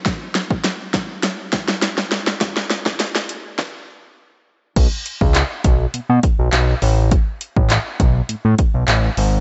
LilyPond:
<<
  \new Staff \with { instrumentName = "Analog synth bass" } { \clef bass \time 4/4 \key a \mixolydian \tempo 4 = 102 r1 | r1 | b,,16 r8 cis,8 r16 b,,8 b,16 b,16 r16 b,,16 b,,8 a,,8~ | a,,16 r8 a,,8 r16 b,,8 a,16 a,16 r16 b,,16 a,,8 gis,,8 | }
  \new DrumStaff \with { instrumentName = "Drums" } \drummode { \time 4/4 <hh bd sn>8 <hh sn>16 bd16 <hh sn>8 <hh bd sn>8 <hh sn>8 <hh bd sn>16 sn16 <hh sn>16 sn16 <hh sn>16 sn16 | <hh bd sn>16 sn16 <hh sn>16 <bd sn>16 <hh sn>16 sn16 hh8 <bd sn>4 r4 | <cymc hh bd>8 hh16 bd16 <hc hh>8 <hh bd>8 hh8 <hh bd>8 <hc hh>8 hho8 | <hh bd>8 hh16 bd16 <hc hh>8 <hh bd>8 hh8 <hh bd>8 <hc hh>8 hho8 | }
>>